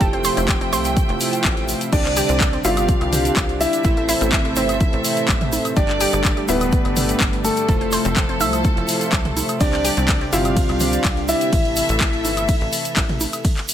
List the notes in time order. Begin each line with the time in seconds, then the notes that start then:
Already playing: A3 G4 G5
0.01 F1 C3 F3 A3 E4 F4 A4 C5 E5, kick, closed hi-hat, shaker
0.13 C4, closed hi-hat
0.24 C5, open hi-hat, shaker
0.37 F1 C4, closed hi-hat, shaker
0.49 C4, kick, clap, closed hi-hat, shaker
0.61 C4, closed hi-hat
0.73 C2 C5, open hi-hat, shaker
0.85 closed hi-hat, shaker
0.97 kick, closed hi-hat, shaker
1.09 F1, closed hi-hat
1.20 A3 E4 F4 C5, open hi-hat, shaker
1.33 closed hi-hat, shaker
1.45 A1, kick, clap, closed hi-hat, shaker
1.57 closed hi-hat
1.68 open hi-hat, shaker
1.81 closed hi-hat, shaker
1.93 C2 C3 D3 G3 C4 D4 G4 D5, kick, closed hi-hat, crash, shaker
2.05 C4, clap, closed hi-hat
2.17 G4, open hi-hat, shaker
2.29 C2 C4, closed hi-hat, shaker
2.41 C4, kick, clap, closed hi-hat, shaker
2.53 C4, closed hi-hat
2.64 G1 E4 F4 F5, open hi-hat, high conga, shaker
2.77 closed hi-hat, high woodblock, shaker
2.88 kick, closed hi-hat, shaker
3.01 C2, closed hi-hat, high woodblock
3.13 C3 C4 D4 G4 D5, open hi-hat, mid tom, shaker
3.25 closed hi-hat, shaker
3.36 C2, kick, clap, closed hi-hat, shaker
3.49 closed hi-hat
3.61 E4 E5, open hi-hat, shaker
3.73 closed hi-hat, shaker
3.84 A1 A2 C3 E3 A3 C4 E4 A4 C5, kick, closed hi-hat, shaker
3.97 A3, closed hi-hat
4.09 E4, open hi-hat, shaker
4.21 A1 A3, closed hi-hat, shaker
4.33 A3, kick, clap, closed hi-hat, shaker
4.45 A3, closed hi-hat
4.56 G1 C4, open hi-hat, high conga, shaker
4.69 closed hi-hat, high woodblock, shaker
4.80 kick, closed hi-hat, high conga, shaker
4.93 A1, closed hi-hat
5.04 A2 A3 C4 E4 C5, open hi-hat, shaker
5.17 closed hi-hat, shaker
5.28 A1, kick, clap, closed hi-hat, shaker
5.41 closed hi-hat, mid tom
5.53 open hi-hat, high conga, shaker
5.65 closed hi-hat, high woodblock, shaker
5.77 G1 G2 D3 G3 A3 D4 G4 A4 D5, kick, closed hi-hat, shaker
5.89 G3, clap, closed hi-hat
6.00 G4, open hi-hat, shaker
6.13 G1 G3, closed hi-hat, shaker
6.24 G3, kick, clap, closed hi-hat, shaker
6.37 G3, closed hi-hat
6.48 D1 B3 E4 B4, open hi-hat, high conga, shaker
6.61 closed hi-hat, high woodblock, shaker
6.72 kick, closed hi-hat, shaker
6.85 G1, closed hi-hat, high woodblock
6.96 G2 A3 D4 G4 D5, open hi-hat, mid tom, shaker
7.09 closed hi-hat, shaker
7.20 G1, kick, clap, closed hi-hat, shaker
7.33 closed hi-hat
7.44 A3 A4, open hi-hat, shaker
7.57 closed hi-hat, shaker
7.69 F1 C3 F3 A3 E4 F4 A4 C5 E5, kick, closed hi-hat, shaker
7.81 C4, closed hi-hat
7.92 C5, open hi-hat, shaker
8.04 F1 C4, closed hi-hat, shaker
8.16 C4, kick, clap, closed hi-hat, shaker
8.29 C4, closed hi-hat
8.41 C2 E5, open hi-hat, high conga, shaker
8.53 closed hi-hat, high woodblock, shaker
8.64 kick, closed hi-hat, high conga, shaker
8.77 F1, closed hi-hat
8.88 A3 E4 F4 C5, open hi-hat, shaker
9.01 closed hi-hat, shaker
9.12 C2, kick, clap, closed hi-hat, shaker
9.25 closed hi-hat, mid tom
9.37 open hi-hat, high conga, shaker
9.49 closed hi-hat, high woodblock, shaker
9.60 C2 C3 D3 G3 C4 D4 G4 D5, kick, closed hi-hat, ride, shaker
9.73 C4, clap, closed hi-hat
9.85 G4, open hi-hat, shaker
9.97 C2 C4, closed hi-hat, shaker
10.08 C4, kick, clap, closed hi-hat, ride, shaker
10.21 C4, closed hi-hat
10.33 G1 E4 F4 F5, open hi-hat, high conga, shaker
10.45 closed hi-hat, high woodblock, shaker
10.57 kick, closed hi-hat, ride, shaker
10.69 C2, closed hi-hat, high woodblock
10.80 C3 C4 D4 G4 D5, open hi-hat, mid tom, shaker
10.93 closed hi-hat, shaker
11.05 C2, kick, clap, closed hi-hat, ride, shaker
11.17 closed hi-hat
11.29 E4 E5, open hi-hat, shaker
11.41 closed hi-hat, shaker
11.53 A1 E3 A3 E4 A4, kick, closed hi-hat, ride, shaker
11.65 closed hi-hat
11.76 open hi-hat, shaker
11.89 A1, closed hi-hat, shaker
12.01 kick, clap, closed hi-hat, ride, shaker
12.13 closed hi-hat
12.25 G1, open hi-hat, high conga, shaker
12.37 closed hi-hat, high woodblock, shaker
12.48 kick, closed hi-hat, ride, high conga, shaker
12.61 A1, closed hi-hat
12.73 open hi-hat, shaker
12.85 closed hi-hat, shaker
12.97 A1, kick, clap, closed hi-hat, ride, shaker
13.09 closed hi-hat, mid tom
13.20 open hi-hat, high conga, shaker
13.33 closed hi-hat, high woodblock, shaker
13.44 kick, closed hi-hat, ride, shaker
13.57 clap, closed hi-hat
13.68 open hi-hat, shaker